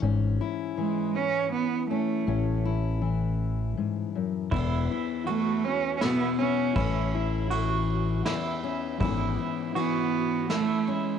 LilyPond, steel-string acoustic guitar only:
\new Staff \with { instrumentName = "Steel-string acoustic guitar" } { \time 3/4 \key a \major \tempo 4 = 80 << { <cis' e'>8 e'2 cis'8 | cis'8 e'2~ e'8 | b8 e'2 b8 | cis'8 e'2 cis'8 |
<e b cis' e'>8 e'2 cis'8 | } \\ { gis,4 e2 | a,4 e4 gis,8 fis,8 | e,4 e4 b,4 | a,4 e4 e,4 |
gis,4 e2 | } >> }